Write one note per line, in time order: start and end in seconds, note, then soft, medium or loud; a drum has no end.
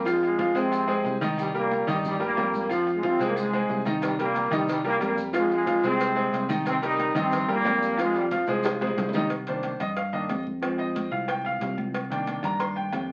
0.00 0.50 F2 medium
0.05 0.22 G#2 medium
0.05 0.33 F3 medium
0.05 0.22 G#3 medium
0.05 0.33 F4 medium
0.05 0.33 F5 medium
0.05 high conga soft
0.05 low agogo loud
0.05 maracas medium
0.23 0.54 G#2 medium
0.23 0.54 G#3 loud
0.23 high conga soft
0.23 low agogo medium
0.23 maracas soft
0.38 0.52 F3 medium
0.38 0.52 F4 medium
0.38 0.53 F5 medium
0.38 high conga loud
0.38 low timbale medium
0.38 maracas soft
0.55 1.01 F2 loud
0.55 1.18 C3 medium
0.55 0.82 G#3 medium
0.55 1.18 C4 loud
0.55 0.82 G#4 medium
0.55 0.82 C5 medium
0.55 high conga soft
0.55 low agogo medium
0.55 maracas medium
0.72 high conga soft
0.72 low agogo loud
0.72 maracas loud
0.87 1.15 G#3 medium
0.87 1.15 G#4 medium
0.87 1.15 C5 medium
0.87 high conga soft
0.87 low agogo medium
0.87 maracas soft
1.04 1.81 C2 medium
1.04 high conga soft
1.04 low timbale medium
1.04 maracas soft
1.21 1.48 D#3 loud
1.21 1.49 D#4 medium
1.21 1.49 D#5 medium
1.21 high conga medium
1.21 low agogo medium
1.21 maracas medium
1.38 1.47 G2 medium
1.38 1.46 G3 medium
1.38 low agogo loud
1.38 maracas medium
1.54 1.86 A#2 medium
1.54 1.82 G3 medium
1.54 1.86 A#3 loud
1.54 1.82 G4 medium
1.54 1.82 A#4 medium
1.54 high conga soft
1.54 maracas soft
1.71 high conga medium
1.71 low timbale medium
1.71 low agogo medium
1.71 maracas soft
1.87 2.34 G2 loud
1.87 1.97 G2 medium
1.87 2.14 D#3 loud
1.87 1.96 G3 medium
1.87 2.15 D#4 loud
1.87 2.15 D#5 loud
1.87 high conga soft
1.87 low conga medium
1.87 low agogo loud
1.87 maracas medium
2.05 2.14 G2 medium
2.05 2.14 G3 loud
2.05 high conga soft
2.05 low conga medium
2.05 maracas loud
2.19 2.53 A#2 medium
2.19 2.33 G3 medium
2.19 2.53 A#3 loud
2.19 2.34 G4 medium
2.19 2.34 A#4 medium
2.19 high conga soft
2.19 low agogo loud
2.19 maracas soft
2.37 3.14 F2 medium
2.37 2.64 G3 medium
2.37 2.64 G4 medium
2.37 2.65 A#4 medium
2.37 high conga medium
2.37 low timbale medium
2.37 low agogo loud
2.37 maracas soft
2.54 2.70 A#2 medium
2.54 2.70 A#3 loud
2.54 high conga medium
2.54 maracas medium
2.70 2.97 F3 medium
2.70 2.91 F3 loud
2.70 2.97 F4 medium
2.70 2.91 F4 medium
2.70 2.98 F5 medium
2.70 low agogo loud
2.70 maracas medium
2.87 high conga soft
2.87 low agogo medium
2.87 maracas soft
2.94 3.04 G#2 medium
2.94 3.03 G#3 medium
3.03 3.25 C3 medium
3.03 3.16 F3 medium
3.03 3.25 C4 medium
3.03 3.17 F4 medium
3.03 3.17 F5 medium
3.03 high conga medium
3.03 low timbale medium
3.03 maracas soft
3.19 3.65 C2 loud
3.19 3.47 G#3 medium
3.19 3.47 G#4 medium
3.19 3.47 C5 medium
3.19 low agogo medium
3.19 maracas medium
3.27 3.32 A#2 medium
3.27 3.32 A#3 loud
3.36 3.84 G#2 medium
3.36 3.83 G#3 loud
3.36 high conga soft
3.36 low agogo loud
3.36 maracas loud
3.53 3.80 G#3 medium
3.53 3.80 G#4 medium
3.53 3.81 C5 medium
3.53 low agogo medium
3.53 maracas soft
3.69 4.46 C2 medium
3.69 high conga soft
3.69 low timbale medium
3.69 maracas soft
3.85 4.13 D#3 medium
3.85 4.13 D#4 medium
3.85 4.14 D#5 medium
3.85 high conga medium
3.85 low agogo medium
3.85 maracas medium
4.02 4.11 G2 medium
4.02 4.11 G3 loud
4.02 cowbell loud
4.02 high conga soft
4.02 low agogo loud
4.02 maracas medium
4.19 4.51 A#2 medium
4.19 4.46 G3 medium
4.19 4.50 A#3 loud
4.19 4.46 G4 medium
4.19 4.46 A#4 medium
4.19 cowbell medium
4.19 high conga soft
4.19 maracas soft
4.35 cowbell medium
4.35 high conga medium
4.35 low timbale medium
4.35 low agogo medium
4.35 maracas soft
4.51 4.97 C2 loud
4.51 4.68 G2 medium
4.51 4.78 D#3 medium
4.51 4.68 G3 loud
4.51 4.79 D#4 loud
4.51 4.79 D#5 medium
4.51 cowbell medium
4.51 high conga soft
4.51 low conga medium
4.51 low agogo loud
4.51 maracas medium
4.68 4.77 G2 medium
4.68 4.76 G3 loud
4.68 cowbell loud
4.68 high conga soft
4.68 maracas loud
4.84 4.94 A#2 medium
4.84 4.98 G3 medium
4.84 4.94 A#3 loud
4.84 4.98 G4 medium
4.84 4.99 A#4 medium
4.84 high conga soft
4.84 low agogo loud
4.84 maracas soft
5.00 5.78 F2 loud
5.00 5.27 G3 medium
5.00 5.28 G4 medium
5.00 5.28 A#4 medium
5.00 cowbell medium
5.00 high conga medium
5.00 low timbale medium
5.00 low agogo loud
5.00 maracas soft
5.04 5.18 A#2 medium
5.04 5.18 A#3 loud
5.17 high conga medium
5.17 maracas medium
5.33 5.61 F3 medium
5.33 5.51 G#3 loud
5.33 5.61 F4 medium
5.33 5.61 F5 medium
5.33 cowbell loud
5.33 high conga soft
5.33 low agogo loud
5.33 maracas medium
5.37 5.51 G#2 medium
5.50 5.83 G#2 medium
5.50 5.83 G#3 loud
5.50 high conga soft
5.50 low agogo medium
5.50 maracas soft
5.66 5.80 F3 medium
5.66 5.80 F4 medium
5.66 5.81 F5 medium
5.66 cowbell medium
5.66 high conga medium
5.66 low timbale medium
5.66 maracas soft
5.83 6.30 C2 loud
5.83 6.47 C3 medium
5.83 6.11 G#3 medium
5.83 6.47 C4 loud
5.83 6.11 G#4 medium
5.83 6.11 C5 medium
5.83 high conga soft
5.83 low agogo medium
5.83 maracas medium
6.00 cowbell loud
6.00 high conga soft
6.00 low agogo loud
6.00 maracas medium
6.15 6.43 G#3 medium
6.15 6.43 G#4 medium
6.15 6.44 C5 medium
6.15 high conga soft
6.15 low agogo medium
6.15 maracas soft
6.32 7.10 C2 loud
6.32 cowbell medium
6.32 high conga soft
6.32 low timbale medium
6.32 maracas soft
6.49 6.76 D#3 loud
6.49 6.77 D#4 medium
6.49 6.77 D#5 medium
6.49 high conga medium
6.49 low agogo medium
6.49 maracas medium
6.66 6.74 C3 medium
6.66 6.74 C4 loud
6.66 cowbell loud
6.66 high conga soft
6.66 low agogo loud
6.66 maracas medium
6.82 7.14 D#3 medium
6.82 7.10 G3 medium
6.82 7.14 D#4 loud
6.82 7.10 G4 medium
6.82 7.10 A#4 medium
6.82 cowbell medium
6.82 maracas soft
6.99 cowbell medium
6.99 high conga medium
6.99 low timbale medium
6.99 low agogo medium
6.99 maracas soft
7.15 7.62 G2 loud
7.15 7.47 C3 medium
7.15 7.42 D#3 loud
7.15 7.47 C4 loud
7.15 7.43 D#4 medium
7.15 7.43 D#5 loud
7.15 cowbell medium
7.15 high conga soft
7.15 low conga medium
7.15 low agogo loud
7.15 maracas medium
7.32 cowbell loud
7.32 high conga soft
7.32 low conga medium
7.32 maracas loud
7.48 7.96 A#2 medium
7.48 7.62 G3 medium
7.48 7.96 A#3 loud
7.48 7.62 G4 medium
7.48 7.62 A#4 medium
7.48 high conga soft
7.48 low agogo medium
7.48 maracas soft
7.65 8.42 F2 loud
7.65 7.92 G3 medium
7.65 7.92 G4 medium
7.65 7.92 A#4 medium
7.65 cowbell medium
7.65 high conga medium
7.65 low timbale medium
7.65 low agogo loud
7.65 maracas soft
7.82 maracas medium
7.97 8.14 G#2 medium
7.97 8.25 F3 medium
7.97 8.15 G#3 loud
7.97 8.25 F4 medium
7.97 8.26 F5 medium
7.97 cowbell loud
7.97 high conga soft
7.97 low agogo loud
7.97 maracas medium
8.15 8.23 G2 medium
8.15 8.23 G3 medium
8.15 high conga soft
8.15 low agogo medium
8.15 maracas soft
8.31 8.45 F3 medium
8.31 9.10 F3 medium
8.31 9.10 F4 medium
8.31 8.45 F4 medium
8.31 8.45 F5 medium
8.31 cowbell medium
8.31 high conga medium
8.31 low timbale medium
8.31 maracas soft
8.47 8.94 C2 loud
8.47 8.75 G#3 medium
8.47 8.75 G#4 medium
8.47 8.75 C5 medium
8.47 high conga soft
8.47 low agogo medium
8.47 maracas medium
8.63 cowbell loud
8.63 high bongo loud
8.63 high conga soft
8.63 high timbale medium
8.63 low agogo loud
8.63 maracas loud
8.80 9.08 G#3 medium
8.80 9.08 G#4 medium
8.80 9.08 C5 medium
8.80 high bongo loud
8.80 high conga soft
8.80 low agogo medium
8.80 maracas soft
8.87 low timbale medium
8.97 9.74 C2 medium
8.97 cowbell medium
8.97 low bongo loud
8.97 high conga soft
8.97 maracas soft
9.09 low timbale loud
9.13 9.28 D#3 medium
9.13 9.28 D#4 medium
9.13 9.29 D#5 medium
9.13 low bongo medium
9.13 high conga medium
9.13 low agogo medium
9.13 maracas medium
9.19 low timbale medium
9.30 cowbell loud
9.30 low agogo loud
9.47 9.69 D#3 medium
9.47 9.70 A#3 medium
9.47 9.70 D4 medium
9.47 9.78 C5 medium
9.47 cowbell medium
9.47 high conga soft
9.63 cowbell medium
9.63 high conga medium
9.63 low timbale medium
9.63 low agogo medium
9.80 10.26 G2 medium
9.80 9.97 D#5 medium
9.80 cowbell medium
9.80 high conga soft
9.80 low conga medium
9.80 low agogo loud
9.97 10.13 F5 medium
9.97 cowbell loud
9.97 high conga soft
10.13 10.28 D#3 soft
10.13 10.28 A#3 soft
10.13 10.28 D4 medium
10.13 10.44 D#5 medium
10.13 high conga soft
10.13 low agogo medium
10.29 11.06 F2 loud
10.29 cowbell medium
10.29 high conga medium
10.29 low timbale medium
10.29 low agogo loud
10.47 high conga medium
10.62 11.90 F3 medium
10.62 11.91 G#3 medium
10.62 11.91 C4 medium
10.62 cowbell loud
10.62 high conga soft
10.62 low agogo loud
10.78 11.10 D#5 medium
10.78 high conga soft
10.78 low agogo medium
10.95 cowbell medium
10.95 high conga medium
10.95 low timbale medium
11.11 11.58 C2 loud
11.11 11.28 F5 medium
11.11 low agogo medium
11.28 11.45 G5 medium
11.28 cowbell loud
11.28 high conga soft
11.28 low agogo loud
11.45 11.76 F5 loud
11.45 high conga soft
11.45 low agogo medium
11.61 12.38 C2 loud
11.61 cowbell medium
11.61 high conga soft
11.61 low timbale medium
11.78 high conga medium
11.78 low agogo medium
11.94 cowbell loud
11.94 high conga soft
11.94 low agogo loud
12.10 13.12 D#3 medium
12.10 13.12 A#3 medium
12.10 13.12 D4 medium
12.10 12.42 G5 medium
12.10 cowbell medium
12.10 high conga soft
12.27 cowbell medium
12.27 high conga medium
12.27 low timbale medium
12.27 low agogo medium
12.43 12.89 G2 loud
12.43 12.60 A#5 medium
12.43 cowbell medium
12.43 high conga soft
12.43 low conga medium
12.43 low agogo loud
12.60 12.76 C6 loud
12.60 cowbell loud
12.60 high conga soft
12.76 13.07 G5 medium
12.76 high conga soft
12.76 low agogo medium
12.92 13.12 F2 medium
12.92 cowbell medium
12.92 high conga medium
12.92 low timbale medium
12.92 low agogo loud